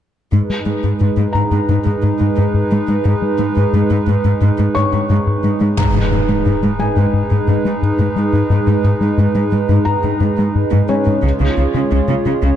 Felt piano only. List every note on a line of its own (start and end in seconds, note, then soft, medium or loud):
1.33 3.34 A#5 soft
4.75 5.73 C#5 soft
4.75 5.73 C#6 soft
5.78 7.78 A#5 soft
6.80 8.80 G#5 soft
9.85 11.86 A#5 soft
10.89 12.56 C#4 soft
10.89 12.56 C#5 soft